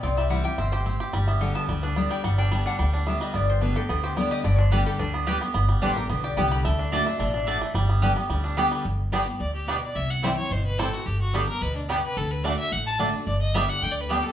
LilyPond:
<<
  \new Staff \with { instrumentName = "Resonator guitar played with a steel bar" } { \time 4/4 \key g \major \tempo 4 = 218 d''8 e''8 fis''8 g''8 e''8 c''8 r4 | r8 e''8 fis''8 a''8 g''8 b'8 d''8 g''8 | fis''8 g''8 a''8 fis''8 g''8 fis''8 e''8 ees''8 | d''8 c''8 b'8 a'8 b'8 c''8 d''8 ees''8 |
d''8 c''8 b'8 a'8 b'2 | r4 c''8 bes'8 b'8 d''8 g''8 b''8 | a''4. e''8 d''4. r8 | r1 |
r1 | r1 | r1 | r1 |
r1 | }
  \new Staff \with { instrumentName = "Fiddle" } { \time 4/4 \key g \major r1 | r1 | r1 | r1 |
r1 | r1 | r1 | r1 |
r2 d''8 g'8 b'8 d''8 | e''8 fis''8 d''8 cis''8 c''8 b'8 a'8 fis'8 | g'8 fis'8 a'8 bes'8 b'8 d'8 g'8 b'8 | a'8 b'8 d''8 e''8 fis''8 a''8 r4 |
d''8 ees''8 e''8 fis''8 \tuplet 3/2 { g''8 d''8 b'8 } g'8 a'8 | }
  \new Staff \with { instrumentName = "Mandolin" } { \time 4/4 \key g \major r1 | r1 | r1 | r1 |
r4 <b g' d'' g''>8 r4. <b g' d'' g''>8 r8 | r4 <b g' d'' g''>8 r4. <b g' d'' g''>8 r8 | r4 <a fis' d'' a''>8 r4. <a fis' d'' a''>8 r8 | r4 <b g' d'' g''>8 r4. <b g' d'' g''>8 r8 |
r4 <b g' d'' g''>8 r4. <b g' d'' g''>8 r8 | r4 <c' e' c'' g''>8 r4. <c' e' c'' g''>8 r8 | r4 <b g' d'' g''>8 r4. <b g' d'' g''>8 r8 | r4 <a fis' d'' a''>8 r4. <a fis' d'' a''>8 r8 |
r4 <b g' d'' g''>8 r4. <b g' d'' g''>8 r8 | }
  \new Staff \with { instrumentName = "Five-string banjo" } { \time 4/4 \key g \major c'8 g8 e'8 g'8 c'8 g'8 c'8 g'8 | g8 b8 d8 b8 g8 d'8 b8 g8 | g8 d'8 g8 d'8 g8 d'8 b8 g8 | b4 d'8 g'8 b8 g'8 b8 g'8 |
d8 d'8 g8 g'8 d'8 b8 g'8 b8 | b8 g8 d'8 g'8 b8 g'8 b8 g'8 | a8 d'8 a8 d'8 a8 d'8 d'8 a8 | g8 b8 d8 b8 g8 d'8 b8 g8 |
r4 <g b d'>8 r4. <g b d'>8 r8 | r4 <g c' e'>8 r4. <g c' e'>8 r8 | r4 <g b d'>8 r4. <g b d'>8 r8 | r4 <a d'>8 r4. <a d'>8 r8 |
r4 <g b d'>8 r4. <g b d'>8 r8 | }
  \new Staff \with { instrumentName = "Steel-string acoustic guitar" } { \clef bass \time 4/4 \key g \major << { r4 <e g c' e'>8 <c' e'>8 r2 | r4 <d g b g'>4 r4 <d g b g'>4 | r4 <d g b g'>4 r4 <d g b g'>4 | r4 <d g b g'>8 <b g'>8 r4 <d g b g'>4 |
r4 <d g b g'>4 r4 <d g b g'>8 <b g'>8 | r4 <d g b g'>8 <b g'>8 r4 <d g b g'>4 | r4 <d a d' fis'>8 <d' fis'>8 r2 | r4 <d g b g'>8 <b g'>8 r4 <d g b g'>4 |
r4 <d g b g'>8 <b g'>8 r2 | r4 <e g c' e'>8 <c' e'>8 r2 | r4 <d g b g'>8 <b g'>8 r2 | r4 <d a d' fis'>4 r4 <d a d' fis'>8 <d' fis'>8 |
r4 <d g b g'>4 r4 <d g b g'>8 <b g'>8 | } \\ { c2 b,4 a,4 | g,2 d2 | g,2 d2 | g,2 d2 |
g,2 d2 | g,2 d2 | d2 b,4 a,4 | g,2 d2 |
g,2 a,4 b,4 | c2 b,4 a,4 | g,2 b,4 c4 | d2 a,2 |
g,2 d2 | } >> }
  \new Staff \with { instrumentName = "Upright bass" } { \clef bass \time 4/4 \key g \major c,2 g,,2 | g,,2 d,2 | g,,2 d,2 | g,,2 d,2 |
g,,2 d,2 | g,,4 a,,4 b,,4 c,4 | d,2 a,,2 | g,,2 d,2 |
g,,2 d,2 | c,2 g,,2 | g,,2 d,2 | d,2 a,,2 |
g,,2 d,2 | }
>>